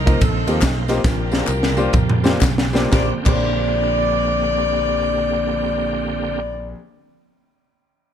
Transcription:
0.00 0.15 C2 loud
0.00 1.01 F3 medium
0.00 1.01 A#3 medium
0.00 1.01 C4 medium
0.00 0.20 D#4 medium
0.00 1.01 D#4 medium
0.00 0.22 A#4 loud
0.00 1.01 C5 medium
0.06 0.17 A#3 medium
0.06 0.17 C4 medium
0.06 0.17 D#4 medium
0.06 0.17 F4 medium
0.06 0.17 D#5 medium
0.06 kick medium
0.06 ride medium
0.06 tambourine medium
0.21 0.44 A#1 medium
0.21 1.01 C4 medium
0.21 1.01 D#4 medium
0.21 0.79 A4 medium
0.21 kick loud
0.21 ride medium
0.21 tambourine medium
0.47 0.60 D#2 medium
0.47 0.58 A#3 medium
0.47 0.58 C4 medium
0.47 0.58 D#4 medium
0.47 0.58 F4 medium
0.47 0.58 G4 medium
0.47 ride medium
0.47 tambourine medium
0.62 0.98 B1 medium
0.62 kick medium
0.62 snare loud
0.62 clap loud
0.62 ride medium
0.62 tambourine loud
0.88 1.00 A#3 medium
0.88 1.00 C4 medium
0.88 1.00 D#4 medium
0.88 1.00 F4 medium
0.88 1.00 G4 loud
0.88 snare soft
0.88 ride medium
0.88 tambourine medium
1.03 1.42 A#1 loud
1.03 2.88 F3 medium
1.03 2.88 A#3 medium
1.03 2.88 C4 medium
1.03 1.11 C#4 medium
1.03 2.38 D4 medium
1.03 2.88 G4 medium
1.03 2.38 G4 medium
1.03 2.38 A#4 medium
1.03 kick loud
1.03 snare medium
1.03 tambourine loud
1.08 2.91 D4 medium
1.32 1.44 A#3 medium
1.32 1.44 D4 medium
1.32 1.44 F4 medium
1.32 1.44 G4 medium
1.32 1.44 C5 medium
1.32 snare medium
1.32 tambourine medium
1.47 1.87 C2 loud
1.47 clap medium
1.47 tambourine medium
1.63 snare medium
1.77 1.89 A#3 loud
1.77 1.89 D4 medium
1.77 1.90 F4 medium
1.77 1.89 G4 medium
1.77 1.90 C5 loud
1.77 tambourine medium
1.93 2.34 F2 medium
1.93 kick loud
1.93 mid tom medium
1.93 tambourine medium
2.10 mid tom medium
2.24 2.37 A#3 medium
2.24 2.37 D4 medium
2.24 2.37 F4 medium
2.24 2.37 G4 medium
2.24 2.37 C5 loud
2.24 snare loud
2.24 tambourine medium
2.41 2.85 B1 medium
2.41 kick medium
2.41 snare medium
2.41 clap loud
2.41 tambourine loud
2.58 snare loud
2.73 2.87 A#3 medium
2.73 2.87 D4 medium
2.73 2.87 F4 medium
2.73 2.87 G4 medium
2.73 2.87 C5 medium
2.73 snare medium
2.73 tambourine medium
2.90 3.11 A#1 medium
2.90 6.40 D3 medium
2.90 3.10 A#3 medium
2.90 6.40 A#3 medium
2.90 6.40 C4 medium
2.90 3.11 D4 medium
2.90 3.11 G4 medium
2.90 6.40 G4 loud
2.90 3.11 D5 medium
2.90 kick loud
2.90 snare medium
2.90 clap medium
2.94 3.12 C5 medium
3.24 6.73 A#1 medium
3.24 6.73 A#1 loud
3.24 6.70 A#3 medium
3.24 6.72 D4 medium
3.24 6.73 G4 medium
3.24 6.73 D5 loud
3.24 kick loud
3.24 clap medium
3.24 crash medium
3.28 6.75 C5 medium

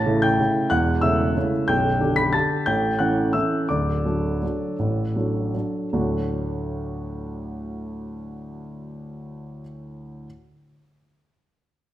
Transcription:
0.00 0.41 A1 medium
0.00 0.41 A2 medium
0.00 0.19 A5 medium
0.00 0.22 A6 medium
0.05 0.36 C#3 soft
0.05 0.36 A3 soft
0.05 0.36 E4 medium
0.22 0.68 G5 medium
0.22 0.70 G6 medium
0.40 0.68 C#3 soft
0.40 0.68 A3 soft
0.40 0.68 E4 soft
0.70 1.01 E1 medium
0.70 1.02 E2 medium
0.70 1.00 F#5 medium
0.70 1.02 F#6 medium
1.01 1.33 C#3 soft
1.01 1.33 A3 soft
1.01 1.33 E4 medium
1.01 1.49 E5 medium
1.01 1.52 E6 medium
1.36 1.65 C#3 soft
1.36 1.66 A3 soft
1.36 1.66 E4 soft
1.68 2.00 B0 medium
1.68 1.99 B1 medium
1.68 2.14 G5 medium
1.68 2.17 G6 medium
2.00 2.31 D3 soft
2.00 2.31 D4 soft
2.00 2.31 G4 soft
2.16 2.33 B5 medium
2.16 2.33 B6 medium
2.33 2.63 D3 soft
2.33 2.64 D4 soft
2.33 2.64 G4 soft
2.33 2.65 A5 medium
2.33 2.66 A6 medium
2.66 2.99 A1 medium
2.66 2.99 A2 soft
2.66 2.98 G5 medium
2.66 2.99 G6 medium
2.99 3.31 E3 soft
2.99 3.31 C#4 soft
2.99 3.31 A4 soft
2.99 3.32 F#5 medium
2.99 3.34 F#6 medium
3.33 3.66 E3 soft
3.33 3.66 C#4 soft
3.33 3.66 A4 soft
3.33 3.67 E5 soft
3.33 3.69 E6 medium
3.69 4.05 D1 soft
3.69 4.04 D2 soft
3.69 5.50 D5 soft
3.69 5.54 D6 medium
4.05 4.39 F#3 soft
4.05 4.39 D4 soft
4.05 4.39 A4 soft
4.42 4.75 F#3 soft
4.42 4.76 D4 soft
4.42 4.76 A4 soft
4.79 5.15 A1 soft
4.79 5.15 A2 soft
5.16 5.51 F#3 soft
5.16 5.51 D4 soft
5.16 5.51 A4 soft
5.54 5.89 F#3 soft
5.54 5.89 D4 soft
5.54 5.89 A4 soft
5.93 9.61 D2 soft
5.93 9.61 A2 soft
5.93 9.61 F#3 soft
5.93 9.61 A3 soft
5.93 9.61 D4 soft
5.93 9.61 F#4 soft

